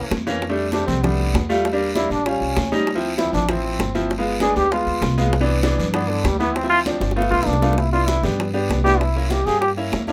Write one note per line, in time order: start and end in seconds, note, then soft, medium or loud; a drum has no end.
0.00 0.10 E2 medium
0.00 0.13 E3 medium
0.00 0.13 A#3 medium
0.00 0.13 C#4 medium
0.11 0.83 F2 medium
0.11 high bongo medium
0.11 low bongo medium
0.11 high conga medium
0.11 short guiro medium
0.27 0.42 E3 medium
0.27 0.42 A#3 medium
0.27 0.42 C#4 loud
0.27 high bongo soft
0.27 short guiro medium
0.42 high bongo medium
0.42 high conga soft
0.42 long guiro medium
0.49 0.66 G3 medium
0.49 0.66 A3 medium
0.49 0.66 D4 medium
0.57 high bongo soft
0.57 high conga soft
0.72 0.94 G3 medium
0.72 0.94 A3 medium
0.72 0.95 C4 medium
0.72 0.86 D4 medium
0.72 high bongo medium
0.72 high conga loud
0.72 short guiro medium
0.87 1.31 C2 loud
0.87 1.05 C4 medium
0.87 high conga soft
0.87 low conga medium
0.87 short guiro medium
1.03 1.36 G3 medium
1.03 1.36 A3 medium
1.03 1.50 B3 medium
1.03 1.36 D4 medium
1.03 high bongo medium
1.03 high conga soft
1.03 low conga medium
1.03 long guiro medium
1.19 high bongo soft
1.19 high conga soft
1.34 2.05 E2 loud
1.34 high bongo medium
1.34 low bongo medium
1.34 high conga medium
1.34 short guiro medium
1.49 1.65 G3 loud
1.49 1.65 A3 medium
1.49 1.65 F4 loud
1.49 high bongo soft
1.49 short guiro medium
1.65 high bongo medium
1.65 high conga soft
1.65 long guiro medium
1.73 1.89 G3 loud
1.73 1.89 A#3 medium
1.73 1.89 D4 loud
1.80 high conga soft
1.95 2.17 G3 medium
1.95 2.17 A#3 medium
1.95 2.17 D4 medium
1.95 2.10 E4 loud
1.95 high bongo medium
1.95 high conga medium
1.95 short guiro medium
2.10 2.39 A1 medium
2.10 2.29 D4 loud
2.10 high bongo soft
2.10 high conga soft
2.10 short guiro medium
2.26 2.59 G3 medium
2.26 2.59 C#4 medium
2.26 2.73 C#4 medium
2.26 2.59 F4 medium
2.26 high bongo medium
2.26 high conga soft
2.26 long guiro medium
2.41 2.56 C2 medium
2.41 high bongo soft
2.41 high conga soft
2.56 3.28 D2 medium
2.56 high bongo medium
2.56 low bongo loud
2.56 high conga medium
2.56 short guiro medium
2.72 2.88 G3 loud
2.72 2.88 C#4 medium
2.72 2.88 D#4 loud
2.72 high bongo soft
2.72 high conga medium
2.72 short guiro medium
2.87 high bongo medium
2.87 high conga soft
2.87 long guiro medium
2.95 3.12 F3 medium
2.95 3.12 C4 medium
2.95 3.12 E4 loud
3.03 high bongo soft
3.03 high conga soft
3.18 3.40 F3 medium
3.18 3.40 C4 medium
3.18 3.33 E4 medium
3.18 3.40 E4 medium
3.18 high bongo medium
3.18 high conga loud
3.18 short guiro medium
3.33 3.76 A1 medium
3.33 3.51 D4 loud
3.33 high conga soft
3.33 low conga medium
3.33 short guiro medium
3.49 3.81 F3 medium
3.49 3.81 C4 medium
3.49 3.95 C4 medium
3.49 3.81 E4 medium
3.49 high bongo medium
3.49 high conga soft
3.49 low conga medium
3.49 long guiro medium
3.64 high bongo soft
3.64 high conga soft
3.79 4.51 G1 medium
3.79 high bongo medium
3.79 low bongo medium
3.79 high conga medium
3.79 short guiro medium
3.95 4.10 F3 loud
3.95 4.10 C4 medium
3.95 4.11 E4 loud
3.95 high bongo soft
3.95 high conga medium
3.95 short guiro medium
4.10 high bongo medium
4.10 high conga soft
4.10 long guiro medium
4.18 4.34 G#3 medium
4.18 4.35 B3 medium
4.18 4.35 F4 loud
4.25 high conga soft
4.40 4.63 G#3 medium
4.40 4.63 B3 medium
4.40 4.63 D4 medium
4.40 4.55 G#4 loud
4.40 high bongo medium
4.40 high conga loud
4.40 short guiro medium
4.56 4.85 D2 loud
4.56 4.73 G4 loud
4.56 high bongo soft
4.56 high conga soft
4.56 short guiro medium
4.71 5.04 G#3 medium
4.71 5.04 B3 medium
4.71 5.04 F4 medium
4.71 5.18 F4 loud
4.71 high bongo medium
4.71 high conga soft
4.71 long guiro medium
4.86 5.01 D2 medium
4.86 high bongo soft
4.86 high conga soft
5.01 5.73 C2 loud
5.01 high bongo medium
5.01 low bongo medium
5.01 high conga loud
5.01 short guiro medium
5.18 5.33 G#3 loud
5.18 5.33 B3 medium
5.18 5.33 F4 loud
5.18 high bongo soft
5.18 high conga medium
5.18 short guiro medium
5.33 high bongo medium
5.33 high conga soft
5.33 long guiro medium
5.41 5.57 E3 loud
5.41 5.57 B3 medium
5.41 5.57 D4 loud
5.48 high bongo soft
5.48 high conga soft
5.63 5.85 E3 medium
5.63 5.85 B3 medium
5.63 5.85 D4 loud
5.63 high bongo medium
5.63 high conga loud
5.63 short guiro medium
5.78 6.21 G2 loud
5.78 high conga soft
5.78 low conga medium
5.78 short guiro medium
5.94 6.27 E3 medium
5.94 6.10 B3 medium
5.94 6.27 B3 medium
5.94 6.27 D4 medium
5.94 high bongo medium
5.94 high conga soft
5.94 long guiro medium
6.09 6.26 D3 medium
6.09 high bongo soft
6.09 high conga soft
6.24 6.96 D2 loud
6.24 6.38 G3 medium
6.24 high bongo medium
6.24 low bongo medium
6.24 high conga medium
6.24 short guiro medium
6.39 6.56 E3 medium
6.39 6.56 B3 loud
6.39 6.56 B3 medium
6.39 6.56 E4 loud
6.39 high bongo soft
6.39 high conga medium
6.39 short guiro medium
6.55 6.69 C4 loud
6.55 high bongo medium
6.55 high conga soft
6.55 long guiro medium
6.63 6.79 F3 medium
6.63 6.79 C4 medium
6.63 6.80 E4 medium
6.69 6.79 F4 loud
6.69 high conga soft
6.86 7.08 F3 medium
6.86 7.08 C4 medium
6.86 7.08 D4 medium
6.86 high bongo medium
6.86 high conga loud
6.86 short guiro medium
7.01 7.30 G1 loud
7.01 high bongo medium
7.01 high conga soft
7.01 short guiro medium
7.11 high bongo medium
7.16 7.49 A3 medium
7.16 7.49 B3 medium
7.16 7.49 F4 loud
7.16 high conga soft
7.16 long guiro medium
7.22 high bongo medium
7.31 7.46 B1 medium
7.31 7.48 F4 loud
7.31 low bongo medium
7.31 high conga soft
7.43 8.18 C2 loud
7.43 7.79 D4 medium
7.43 low bongo medium
7.47 high conga medium
7.47 short guiro medium
7.53 low bongo medium
7.62 7.78 A3 medium
7.62 7.78 B3 medium
7.62 7.78 F4 medium
7.62 low bongo loud
7.62 high conga medium
7.62 short guiro medium
7.73 low bongo medium
7.77 7.92 E4 medium
7.77 high bongo medium
7.77 high conga soft
7.77 long guiro medium
7.92 8.15 B3 medium
7.92 8.15 D4 medium
7.92 8.15 E4 medium
7.92 8.09 F4 loud
7.92 high bongo soft
7.92 high conga soft
8.08 8.24 E4 medium
8.08 high bongo medium
8.08 high conga loud
8.08 short guiro medium
8.23 8.66 G2 loud
8.23 8.45 B3 medium
8.23 8.45 D4 medium
8.23 8.45 G4 medium
8.23 high conga soft
8.23 low conga medium
8.23 short guiro medium
8.39 high bongo medium
8.39 high conga soft
8.39 long guiro medium
8.54 8.76 B3 medium
8.54 8.76 D4 medium
8.54 8.76 G4 loud
8.54 high bongo soft
8.54 high conga soft
8.69 9.41 C2 medium
8.69 high bongo medium
8.69 low bongo medium
8.69 high conga medium
8.69 short guiro medium
8.84 9.00 B3 medium
8.84 9.00 D4 medium
8.84 9.00 E4 medium
8.84 9.02 G4 loud
8.84 high bongo soft
8.84 high conga medium
8.84 short guiro medium
9.00 9.32 E4 medium
9.00 high bongo medium
9.00 high conga soft
9.00 long guiro medium
9.15 9.37 A#3 medium
9.15 9.38 C#4 medium
9.15 9.38 E4 medium
9.15 high conga soft
9.30 9.47 G4 medium
9.30 high bongo medium
9.30 high conga medium
9.30 short guiro medium
9.46 9.89 G2 loud
9.46 9.68 A#3 medium
9.46 9.68 C#4 medium
9.46 9.69 G4 medium
9.46 9.60 G#4 loud
9.46 high bongo soft
9.46 high conga soft
9.46 short guiro medium
9.61 9.70 G4 loud
9.61 high bongo medium
9.61 high conga soft
9.61 long guiro medium
9.76 9.99 A#3 medium
9.76 9.99 C#4 medium
9.76 9.99 E4 medium
9.76 high bongo soft
9.76 high conga soft
9.92 10.12 F2 medium
9.92 high bongo medium
9.92 low bongo medium
9.92 high conga medium
9.92 short guiro medium
10.07 10.12 A#3 medium
10.07 10.12 C#4 medium
10.07 10.12 D4 medium
10.07 10.12 E4 loud
10.07 high bongo soft
10.07 high conga medium
10.07 short guiro medium